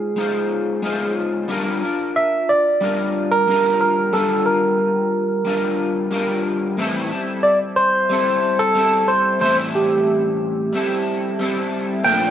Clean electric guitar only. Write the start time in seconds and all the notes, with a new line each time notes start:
Already playing: G#3 D#4 F4 C5
0.16 G#3 D#4 F4 C5
0.82 G#3 D#4 F4 C5
1.48 G3 D4 F4 A#4
1.81 D4 F4 A#4
2.81 G3 D4 F4 A#4
3.47 G3 D4 F4 A#4
4.13 G3 D4 F4
5.45 G3 D4 F4 A#4
6.11 G3 D4 F4 A#4
6.77 A2 E3 G3 C4 E4 A4
7.10 G3 C4 E4 A4
8.09 G3 C4 E4 A4
8.75 G3 C4 E4 A4
9.39 A2 E3 G3 C4
9.44 E4 A4
10.73 G3 C4 E4 A4
11.39 G3 C4 E4 A4
12.04 A#2 F3 A3
12.09 D4